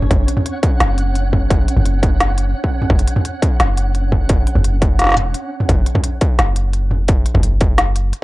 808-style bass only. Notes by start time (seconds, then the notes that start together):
0.11 F#1
0.80 F#1
1.76 F#1
2.90 F#1
3.60 F#1
4.55 F#1
5.17 E1
5.69 F#1
6.39 F#1
7.35 F#1